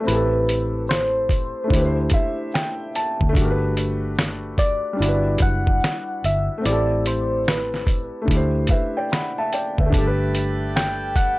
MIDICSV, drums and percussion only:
0, 0, Header, 1, 2, 480
1, 0, Start_track
1, 0, Key_signature, 1, "major"
1, 0, Tempo, 821918
1, 39, Time_signature, 4, 2, 24, 8
1, 6651, End_track
2, 0, Start_track
2, 0, Title_t, "Drums"
2, 33, Note_on_c, 9, 82, 64
2, 48, Note_on_c, 9, 42, 81
2, 92, Note_off_c, 9, 82, 0
2, 106, Note_off_c, 9, 42, 0
2, 270, Note_on_c, 9, 82, 39
2, 286, Note_on_c, 9, 42, 70
2, 329, Note_off_c, 9, 82, 0
2, 344, Note_off_c, 9, 42, 0
2, 512, Note_on_c, 9, 82, 62
2, 531, Note_on_c, 9, 38, 119
2, 543, Note_on_c, 9, 42, 90
2, 570, Note_off_c, 9, 82, 0
2, 589, Note_off_c, 9, 38, 0
2, 601, Note_off_c, 9, 42, 0
2, 755, Note_on_c, 9, 36, 89
2, 757, Note_on_c, 9, 82, 49
2, 761, Note_on_c, 9, 42, 62
2, 814, Note_off_c, 9, 36, 0
2, 815, Note_off_c, 9, 82, 0
2, 820, Note_off_c, 9, 42, 0
2, 993, Note_on_c, 9, 82, 67
2, 995, Note_on_c, 9, 36, 91
2, 1013, Note_on_c, 9, 42, 79
2, 1051, Note_off_c, 9, 82, 0
2, 1053, Note_off_c, 9, 36, 0
2, 1072, Note_off_c, 9, 42, 0
2, 1224, Note_on_c, 9, 82, 56
2, 1225, Note_on_c, 9, 42, 72
2, 1236, Note_on_c, 9, 36, 91
2, 1282, Note_off_c, 9, 82, 0
2, 1283, Note_off_c, 9, 42, 0
2, 1294, Note_off_c, 9, 36, 0
2, 1470, Note_on_c, 9, 82, 82
2, 1491, Note_on_c, 9, 38, 117
2, 1492, Note_on_c, 9, 42, 84
2, 1528, Note_off_c, 9, 82, 0
2, 1550, Note_off_c, 9, 38, 0
2, 1550, Note_off_c, 9, 42, 0
2, 1711, Note_on_c, 9, 82, 48
2, 1725, Note_on_c, 9, 42, 59
2, 1769, Note_off_c, 9, 82, 0
2, 1784, Note_off_c, 9, 42, 0
2, 1873, Note_on_c, 9, 36, 92
2, 1932, Note_off_c, 9, 36, 0
2, 1955, Note_on_c, 9, 82, 61
2, 1957, Note_on_c, 9, 36, 105
2, 1964, Note_on_c, 9, 42, 87
2, 2013, Note_off_c, 9, 82, 0
2, 2015, Note_off_c, 9, 36, 0
2, 2023, Note_off_c, 9, 42, 0
2, 2189, Note_on_c, 9, 82, 41
2, 2201, Note_on_c, 9, 42, 67
2, 2247, Note_off_c, 9, 82, 0
2, 2260, Note_off_c, 9, 42, 0
2, 2424, Note_on_c, 9, 82, 60
2, 2445, Note_on_c, 9, 38, 116
2, 2457, Note_on_c, 9, 42, 91
2, 2483, Note_off_c, 9, 82, 0
2, 2503, Note_off_c, 9, 38, 0
2, 2515, Note_off_c, 9, 42, 0
2, 2671, Note_on_c, 9, 82, 47
2, 2674, Note_on_c, 9, 36, 88
2, 2679, Note_on_c, 9, 42, 68
2, 2730, Note_off_c, 9, 82, 0
2, 2733, Note_off_c, 9, 36, 0
2, 2737, Note_off_c, 9, 42, 0
2, 2911, Note_on_c, 9, 82, 66
2, 2933, Note_on_c, 9, 42, 81
2, 2970, Note_off_c, 9, 82, 0
2, 2991, Note_off_c, 9, 42, 0
2, 3143, Note_on_c, 9, 42, 72
2, 3146, Note_on_c, 9, 82, 56
2, 3156, Note_on_c, 9, 36, 97
2, 3202, Note_off_c, 9, 42, 0
2, 3204, Note_off_c, 9, 82, 0
2, 3214, Note_off_c, 9, 36, 0
2, 3312, Note_on_c, 9, 36, 86
2, 3370, Note_off_c, 9, 36, 0
2, 3389, Note_on_c, 9, 82, 78
2, 3411, Note_on_c, 9, 38, 117
2, 3412, Note_on_c, 9, 42, 81
2, 3447, Note_off_c, 9, 82, 0
2, 3470, Note_off_c, 9, 38, 0
2, 3470, Note_off_c, 9, 42, 0
2, 3640, Note_on_c, 9, 82, 45
2, 3646, Note_on_c, 9, 42, 62
2, 3698, Note_off_c, 9, 82, 0
2, 3704, Note_off_c, 9, 42, 0
2, 3875, Note_on_c, 9, 82, 62
2, 3886, Note_on_c, 9, 42, 89
2, 3933, Note_off_c, 9, 82, 0
2, 3945, Note_off_c, 9, 42, 0
2, 4111, Note_on_c, 9, 82, 42
2, 4122, Note_on_c, 9, 42, 68
2, 4170, Note_off_c, 9, 82, 0
2, 4180, Note_off_c, 9, 42, 0
2, 4346, Note_on_c, 9, 82, 62
2, 4369, Note_on_c, 9, 38, 118
2, 4381, Note_on_c, 9, 42, 92
2, 4404, Note_off_c, 9, 82, 0
2, 4427, Note_off_c, 9, 38, 0
2, 4439, Note_off_c, 9, 42, 0
2, 4520, Note_on_c, 9, 38, 35
2, 4578, Note_off_c, 9, 38, 0
2, 4590, Note_on_c, 9, 82, 47
2, 4595, Note_on_c, 9, 36, 81
2, 4600, Note_on_c, 9, 42, 65
2, 4648, Note_off_c, 9, 82, 0
2, 4653, Note_off_c, 9, 36, 0
2, 4658, Note_off_c, 9, 42, 0
2, 4832, Note_on_c, 9, 82, 69
2, 4835, Note_on_c, 9, 36, 80
2, 4853, Note_on_c, 9, 42, 84
2, 4891, Note_off_c, 9, 82, 0
2, 4893, Note_off_c, 9, 36, 0
2, 4911, Note_off_c, 9, 42, 0
2, 5064, Note_on_c, 9, 42, 69
2, 5065, Note_on_c, 9, 82, 54
2, 5076, Note_on_c, 9, 36, 95
2, 5123, Note_off_c, 9, 42, 0
2, 5124, Note_off_c, 9, 82, 0
2, 5134, Note_off_c, 9, 36, 0
2, 5310, Note_on_c, 9, 82, 75
2, 5331, Note_on_c, 9, 38, 113
2, 5332, Note_on_c, 9, 42, 77
2, 5369, Note_off_c, 9, 82, 0
2, 5390, Note_off_c, 9, 38, 0
2, 5390, Note_off_c, 9, 42, 0
2, 5557, Note_on_c, 9, 82, 47
2, 5563, Note_on_c, 9, 42, 60
2, 5615, Note_off_c, 9, 82, 0
2, 5622, Note_off_c, 9, 42, 0
2, 5713, Note_on_c, 9, 36, 92
2, 5772, Note_off_c, 9, 36, 0
2, 5795, Note_on_c, 9, 82, 61
2, 5797, Note_on_c, 9, 36, 107
2, 5804, Note_on_c, 9, 42, 89
2, 5853, Note_off_c, 9, 82, 0
2, 5855, Note_off_c, 9, 36, 0
2, 5862, Note_off_c, 9, 42, 0
2, 6034, Note_on_c, 9, 82, 43
2, 6042, Note_on_c, 9, 42, 68
2, 6092, Note_off_c, 9, 82, 0
2, 6101, Note_off_c, 9, 42, 0
2, 6265, Note_on_c, 9, 82, 67
2, 6288, Note_on_c, 9, 38, 121
2, 6301, Note_on_c, 9, 42, 93
2, 6324, Note_off_c, 9, 82, 0
2, 6347, Note_off_c, 9, 38, 0
2, 6359, Note_off_c, 9, 42, 0
2, 6513, Note_on_c, 9, 82, 50
2, 6515, Note_on_c, 9, 36, 85
2, 6520, Note_on_c, 9, 42, 65
2, 6571, Note_off_c, 9, 82, 0
2, 6574, Note_off_c, 9, 36, 0
2, 6579, Note_off_c, 9, 42, 0
2, 6651, End_track
0, 0, End_of_file